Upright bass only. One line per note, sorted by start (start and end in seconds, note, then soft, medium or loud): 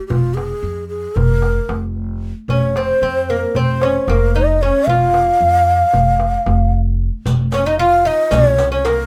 0.10 0.51 F1 medium
0.63 1.04 F2 medium
1.16 1.57 F1 medium
1.69 2.31 F1 medium
2.48 2.89 F1 medium
3.02 3.43 F2 medium
3.55 3.96 F1 medium
4.08 4.69 F1 medium
4.87 5.28 F1 medium
5.41 5.81 F2 medium
5.94 6.35 F1 medium
6.46 7.08 F1 medium
7.25 8.08 F1 medium
8.31 9.06 C2 loud